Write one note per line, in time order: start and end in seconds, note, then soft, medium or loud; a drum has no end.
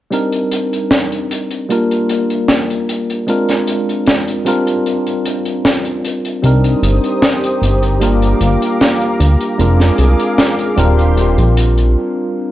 0.11 1.62 G3 medium
0.11 1.62 C4 medium
0.11 1.63 D4 medium
0.11 1.63 D#4 medium
0.11 1.63 A#4 medium
0.11 closed hi-hat medium
0.33 closed hi-hat soft
0.52 closed hi-hat medium
0.73 closed hi-hat medium
0.91 snare loud
0.91 closed hi-hat medium
1.12 closed hi-hat medium
1.31 closed hi-hat medium
1.51 closed hi-hat medium
1.69 3.20 G3 medium
1.69 3.20 A#3 medium
1.69 3.21 D4 medium
1.69 3.21 F4 medium
1.69 3.21 A#4 medium
1.69 closed hi-hat medium
1.91 closed hi-hat soft
2.09 closed hi-hat medium
2.30 closed hi-hat soft
2.48 snare loud
2.48 closed hi-hat medium
2.70 closed hi-hat medium
2.89 closed hi-hat medium
3.10 closed hi-hat medium
3.27 4.38 G#3 medium
3.27 4.39 C4 medium
3.27 4.39 D4 medium
3.27 4.39 F4 medium
3.27 4.40 A#4 medium
3.27 closed hi-hat medium
3.49 snare soft
3.49 closed hi-hat medium
3.67 closed hi-hat medium
3.89 closed hi-hat medium
4.06 snare loud
4.06 closed hi-hat medium
4.28 closed hi-hat soft
4.45 6.35 G3 medium
4.45 6.36 C4 medium
4.45 6.36 D4 medium
4.45 6.37 F4 medium
4.45 6.37 A#4 medium
4.45 closed hi-hat medium
4.67 closed hi-hat medium
4.86 closed hi-hat medium
5.07 closed hi-hat medium
5.25 closed hi-hat medium
5.45 closed hi-hat medium
5.65 snare loud
5.65 closed hi-hat medium
5.85 closed hi-hat soft
6.05 closed hi-hat medium
6.25 closed hi-hat medium
6.42 6.75 C2 loud
6.42 7.93 G3 medium
6.42 7.94 C4 medium
6.42 7.94 D4 medium
6.42 7.95 D#4 medium
6.42 9.56 G4 medium
6.42 7.95 A#4 medium
6.42 8.00 C5 medium
6.42 10.74 A#5 medium
6.42 8.00 D#6 medium
6.42 closed hi-hat medium
6.64 closed hi-hat medium
6.83 7.00 G1 medium
6.83 closed hi-hat medium
7.04 closed hi-hat soft
7.22 snare loud
7.22 closed hi-hat medium
7.44 closed hi-hat medium
7.62 8.35 G1 medium
7.62 closed hi-hat medium
7.82 closed hi-hat medium
8.00 9.51 G3 medium
8.00 9.52 A#3 medium
8.00 9.52 D4 medium
8.00 9.52 F4 medium
8.00 9.53 A#4 medium
8.00 9.58 F5 medium
8.00 9.58 D6 medium
8.00 closed hi-hat medium
8.22 closed hi-hat soft
8.41 8.58 G1 medium
8.41 closed hi-hat medium
8.62 closed hi-hat medium
8.81 snare loud
8.81 closed hi-hat medium
9.01 closed hi-hat soft
9.20 9.37 D2 medium
9.20 closed hi-hat medium
9.41 closed hi-hat soft
9.58 9.91 F1 loud
9.58 10.70 G#3 medium
9.58 10.70 C4 medium
9.58 10.70 D4 medium
9.58 10.71 F4 medium
9.58 10.77 G#4 medium
9.58 10.71 A#4 medium
9.58 11.94 F5 medium
9.58 11.94 D6 medium
9.58 closed hi-hat medium
9.80 snare soft
9.80 closed hi-hat medium
9.98 10.15 C2 medium
9.98 closed hi-hat medium
10.19 closed hi-hat medium
10.38 snare loud
10.38 closed hi-hat medium
10.59 closed hi-hat medium
10.76 11.37 D#1 medium
10.76 12.52 G3 medium
10.76 12.52 C4 medium
10.76 12.52 D4 medium
10.76 12.52 F4 medium
10.76 11.95 G4 medium
10.76 12.52 A#4 medium
10.76 11.95 C6 medium
10.76 closed hi-hat medium
10.99 closed hi-hat medium
11.17 closed hi-hat medium
11.38 11.96 A#1 medium
11.38 closed hi-hat soft
11.57 closed hi-hat medium
11.78 closed hi-hat soft